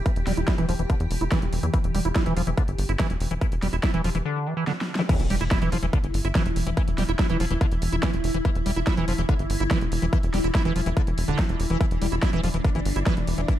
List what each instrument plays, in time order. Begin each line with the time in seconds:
Already playing: ambient pad E3 G4
0.06 acid bass E3, kick, closed hi-hat
0.16 analog synth bass E1, closed hi-hat
0.27 analog synth bass E1, acid bass G3, snare, open hi-hat
0.37 analog synth bass E1, acid bass E4, closed hi-hat
0.48 acid bass E4, kick, snare, closed hi-hat
0.58 analog synth bass E1, acid bass E3, closed hi-hat
0.69 analog synth bass E1, acid bass F3, open hi-hat
0.79 analog synth bass E1, acid bass E3, closed hi-hat
0.90 acid bass D3, kick, closed hi-hat
1.00 analog synth bass E2, closed hi-hat
1.11 analog synth bass E1, open hi-hat
1.21 analog synth bass E1, acid bass E4, closed hi-hat
1.32 acid bass E3, kick, snare, closed hi-hat
1.42 analog synth bass E1, closed hi-hat
1.53 analog synth bass E1, open hi-hat
1.63 analog synth bass E2, acid bass E3, closed hi-hat
1.74 acid bass E3, kick, closed hi-hat
1.84 analog synth bass E1, closed hi-hat
1.95 analog synth bass E1, acid bass G3, open hi-hat
2.05 analog synth bass E1, acid bass E4, closed hi-hat
2.16 acid bass E4, kick, snare, closed hi-hat
2.26 analog synth bass E1, acid bass E3, closed hi-hat
2.37 analog synth bass E1, acid bass F3, open hi-hat
2.47 analog synth bass E1, acid bass E3, closed hi-hat
2.58 acid bass D3, kick, closed hi-hat
2.68 analog synth bass G1, closed hi-hat
2.78 analog synth bass G1, open hi-hat
2.89 analog synth bass G1, acid bass E4, closed hi-hat
2.99 acid bass E3, kick, snare, closed hi-hat
3.10 analog synth bass E1, closed hi-hat
3.20 analog synth bass E1, open hi-hat
3.31 analog synth bass E1, acid bass E3, closed hi-hat
3.41 acid bass E3, kick, closed hi-hat
3.52 analog synth bass E1, closed hi-hat
3.62 analog synth bass E1, acid bass G3, snare, open hi-hat
3.73 analog synth bass E1, acid bass E4, closed hi-hat
3.83 acid bass E4, kick, snare, closed hi-hat
3.94 analog synth bass E1, acid bass E3, closed hi-hat
4.04 analog synth bass E1, acid bass F3, open hi-hat
4.15 analog synth bass E1, acid bass E3, closed hi-hat
4.25 acid bass D3
4.46 acid bass E3
4.57 acid bass E3
4.67 acid bass D3, snare
4.81 snare
4.95 acid bass E3, snare, zap
5.09 ambient pad E3 E4, acid bass E3, kick, closed hi-hat, crash, impact
5.20 analog synth bass E1, closed hi-hat
5.30 analog synth bass E1, acid bass G3, open hi-hat
5.41 analog synth bass E1, acid bass E4, closed hi-hat
5.51 acid bass E4, kick, snare, closed hi-hat
5.62 analog synth bass E1, acid bass E3, closed hi-hat
5.72 analog synth bass E1, acid bass F3, open hi-hat
5.83 analog synth bass E1, acid bass E3, closed hi-hat
5.93 acid bass D3, kick, closed hi-hat
6.04 analog synth bass G1, closed hi-hat
6.14 analog synth bass G1, open hi-hat
6.25 analog synth bass G1, acid bass E4, closed hi-hat
6.35 acid bass E3, kick, snare, closed hi-hat
6.46 analog synth bass E1, closed hi-hat
6.56 analog synth bass E1, open hi-hat
6.67 analog synth bass E1, acid bass E3, closed hi-hat
6.77 acid bass E3, kick, closed hi-hat
6.88 analog synth bass E1, closed hi-hat
6.98 analog synth bass E1, acid bass G3, snare, open hi-hat
7.09 analog synth bass E1, acid bass E4, closed hi-hat
7.19 acid bass E4, kick, snare, closed hi-hat
7.30 analog synth bass E1, acid bass E3, closed hi-hat
7.40 analog synth bass E1, acid bass F3, open hi-hat
7.51 analog synth bass E1, acid bass E3, closed hi-hat
7.61 acid bass D3, kick, closed hi-hat
7.72 analog synth bass E1, closed hi-hat
7.82 analog synth bass E1, open hi-hat
7.92 analog synth bass E1, acid bass E4, closed hi-hat
8.03 acid bass E3, kick, snare, closed hi-hat
8.13 analog synth bass E1, closed hi-hat
8.24 analog synth bass E1, open hi-hat
8.34 analog synth bass E1, acid bass E3, closed hi-hat
8.45 acid bass E3, kick, closed hi-hat
8.55 analog synth bass E1, closed hi-hat
8.66 analog synth bass E1, acid bass G3, open hi-hat
8.76 analog synth bass E1, acid bass E4, closed hi-hat
8.87 acid bass E4, kick, snare, closed hi-hat
8.97 analog synth bass E1, acid bass E3, closed hi-hat
9.08 analog synth bass E1, acid bass F3, open hi-hat
9.18 analog synth bass E1, acid bass E3, closed hi-hat
9.29 acid bass D3, kick, closed hi-hat
9.39 analog synth bass G1, closed hi-hat
9.50 analog synth bass G1, open hi-hat
9.60 analog synth bass G1, acid bass E4, closed hi-hat
9.71 acid bass E3, kick, snare, closed hi-hat
9.81 analog synth bass E1, closed hi-hat
9.92 analog synth bass E1, open hi-hat
10.02 analog synth bass E1, acid bass E3, closed hi-hat
10.13 acid bass E3, kick, closed hi-hat
10.23 analog synth bass E1, closed hi-hat
10.34 analog synth bass E1, acid bass G3, snare, open hi-hat
10.44 analog synth bass E1, acid bass E4, closed hi-hat
10.55 acid bass E4, kick, snare, closed hi-hat
10.65 analog synth bass E1, acid bass E3, closed hi-hat
10.76 analog synth bass E1, acid bass F3, open hi-hat
10.86 analog synth bass E1, acid bass E3, closed hi-hat
10.97 acid bass D3, kick, closed hi-hat
11.07 analog synth bass E1, closed hi-hat
11.18 analog synth bass E1, open hi-hat
11.28 analog synth bass E1, acid bass D3, closed hi-hat
11.39 acid bass E3, kick, snare, closed hi-hat
11.49 analog synth bass E1, closed hi-hat
11.60 analog synth bass E1, open hi-hat
11.70 analog synth bass E1, acid bass E3, closed hi-hat
11.81 acid bass E3, ambient pad D4, kick, closed hi-hat
11.91 analog synth bass E1, closed hi-hat
12.02 analog synth bass E1, acid bass G3, open hi-hat
12.12 analog synth bass E1, acid bass E4, closed hi-hat
12.23 acid bass E4, kick, snare, closed hi-hat
12.33 analog synth bass E1, acid bass E3, closed hi-hat
12.44 analog synth bass E1, acid bass F3, open hi-hat
12.54 analog synth bass E1, acid bass E3, closed hi-hat
12.64 acid bass D3, kick, closed hi-hat
12.75 analog synth bass G1, acid bass E3, closed hi-hat
12.85 analog synth bass G1, open hi-hat
12.96 analog synth bass G1, acid bass E4, closed hi-hat
13.06 acid bass E3, kick, snare, closed hi-hat
13.17 analog synth bass E1, closed hi-hat
13.27 analog synth bass E1, open hi-hat
13.38 analog synth bass E1, acid bass E3, closed hi-hat
13.48 acid bass E3, kick, closed hi-hat